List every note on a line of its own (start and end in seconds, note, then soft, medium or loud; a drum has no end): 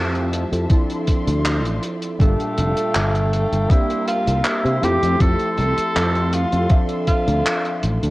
0.00 0.44 F2 medium
0.00 0.62 F3 medium
0.00 0.68 F3 medium
0.00 0.63 A3 medium
0.00 0.63 C4 medium
0.00 0.64 E4 medium
0.00 0.64 G4 medium
0.00 0.69 C5 medium
0.00 2.16 E5 medium
0.00 0.68 A5 medium
0.15 closed hi-hat soft
0.33 closed hi-hat medium
0.52 0.65 F2 medium
0.52 closed hi-hat medium
0.69 2.12 F3 medium
0.69 2.19 F3 medium
0.69 2.13 C4 medium
0.69 2.13 D4 medium
0.69 2.14 E4 medium
0.69 2.14 A4 medium
0.69 2.19 D5 medium
0.69 2.19 C6 medium
0.69 kick loud
0.69 closed hi-hat medium
0.90 closed hi-hat soft
1.07 kick medium
1.07 closed hi-hat medium
1.27 1.65 D2 medium
1.27 closed hi-hat medium
1.45 clap loud
1.45 closed hi-hat medium
1.65 1.78 A1 medium
1.65 closed hi-hat soft
1.83 closed hi-hat medium
2.02 closed hi-hat medium
2.19 2.34 G1 medium
2.19 3.63 A#2 medium
2.19 3.63 G3 medium
2.19 3.72 A3 medium
2.19 3.63 D4 medium
2.19 3.64 F4 medium
2.19 3.69 A4 medium
2.19 3.64 A4 medium
2.19 3.69 F5 medium
2.19 4.80 G5 medium
2.19 kick loud
2.19 closed hi-hat medium
2.40 closed hi-hat soft
2.58 2.72 F1 medium
2.58 closed hi-hat medium
2.77 closed hi-hat medium
2.95 3.44 G1 medium
2.95 clap loud
2.95 closed hi-hat medium
3.15 closed hi-hat soft
3.33 closed hi-hat loud
3.52 3.65 G1 medium
3.52 closed hi-hat medium
3.68 4.75 G3 medium
3.68 4.75 A#3 medium
3.68 4.75 C4 medium
3.68 4.76 D4 medium
3.68 4.07 E4 loud
3.68 4.76 G4 medium
3.68 4.82 A#4 medium
3.68 4.82 E5 medium
3.68 8.10 C6 medium
3.68 kick loud
3.68 closed hi-hat medium
3.90 closed hi-hat soft
4.08 4.47 F4 medium
4.08 closed hi-hat medium
4.27 4.40 C2 medium
4.27 closed hi-hat medium
4.45 4.85 E4 loud
4.45 clap loud
4.45 closed hi-hat medium
4.65 4.78 C3 medium
4.65 closed hi-hat soft
4.81 4.97 F2 medium
4.81 6.62 F3 medium
4.81 6.63 A3 medium
4.81 6.63 C4 medium
4.81 6.63 E4 medium
4.81 5.22 G4 loud
4.81 6.64 G4 loud
4.81 6.69 A4 medium
4.81 6.69 E5 medium
4.81 closed hi-hat medium
5.02 5.15 F2 medium
5.02 closed hi-hat medium
5.20 5.34 F2 medium
5.20 6.35 A4 loud
5.20 kick loud
5.20 closed hi-hat medium
5.39 closed hi-hat soft
5.58 5.72 C2 medium
5.58 closed hi-hat medium
5.78 closed hi-hat medium
5.96 6.44 F2 medium
5.96 clap loud
5.96 closed hi-hat medium
6.15 closed hi-hat soft
6.33 6.82 F4 loud
6.33 closed hi-hat loud
6.52 6.66 F2 medium
6.52 closed hi-hat medium
6.69 8.10 F3 medium
6.69 8.10 C4 medium
6.69 8.10 D4 medium
6.69 8.10 A4 medium
6.69 8.10 D5 medium
6.69 8.10 E5 medium
6.69 kick loud
6.69 closed hi-hat medium
6.89 closed hi-hat soft
7.07 7.79 F4 medium
7.07 kick medium
7.07 closed hi-hat medium
7.28 7.41 D2 loud
7.28 closed hi-hat medium
7.46 clap loud
7.46 closed hi-hat medium
7.65 closed hi-hat soft
7.83 7.97 A1 loud
7.83 closed hi-hat medium
8.03 8.10 D2 medium
8.03 closed hi-hat medium